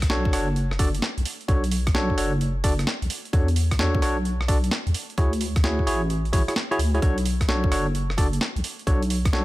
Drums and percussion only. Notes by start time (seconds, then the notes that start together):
0.02 kick, cross-stick, closed hi-hat
0.10 snare
0.25 kick
0.33 cross-stick, open hi-hat
0.56 closed hi-hat
0.71 cross-stick
0.79 kick, open hi-hat
0.95 closed hi-hat
1.02 snare
1.18 closed hi-hat
1.25 open hi-hat
1.41 closed hi-hat
1.49 kick, closed hi-hat
1.64 closed hi-hat
1.71 open hi-hat
1.87 kick, cross-stick, closed hi-hat
1.95 snare
2.10 kick
2.18 open hi-hat
2.41 closed hi-hat
2.64 kick, open hi-hat
2.79 cross-stick, closed hi-hat
2.87 snare
3.02 closed hi-hat
3.10 open hi-hat
3.25 closed hi-hat
3.33 kick, closed hi-hat
3.48 closed hi-hat
3.56 open hi-hat
3.71 kick, cross-stick, closed hi-hat
3.79 snare
3.95 kick
4.02 cross-stick, open hi-hat
4.25 closed hi-hat
4.41 cross-stick
4.48 kick, open hi-hat
4.64 closed hi-hat
4.71 snare
4.87 closed hi-hat
4.94 open hi-hat
5.10 closed hi-hat
5.18 kick, closed hi-hat
5.33 closed hi-hat
5.41 open hi-hat
5.56 kick, cross-stick, closed hi-hat
5.64 snare
5.79 kick
5.87 open hi-hat
6.10 closed hi-hat
6.25 closed hi-hat
6.33 kick, open hi-hat
6.48 cross-stick, closed hi-hat
6.56 snare
6.72 closed hi-hat
6.79 open hi-hat
6.95 closed hi-hat
7.02 kick, closed hi-hat
7.18 closed hi-hat
7.26 open hi-hat
7.41 kick, cross-stick, closed hi-hat
7.49 snare
7.64 kick
7.72 cross-stick, open hi-hat
7.95 closed hi-hat
8.10 cross-stick
8.18 kick, open hi-hat
8.33 closed hi-hat
8.41 snare
8.56 closed hi-hat
8.64 open hi-hat
8.79 closed hi-hat
8.87 kick, closed hi-hat
9.02 closed hi-hat
9.10 open hi-hat
9.25 kick, cross-stick, closed hi-hat
9.33 snare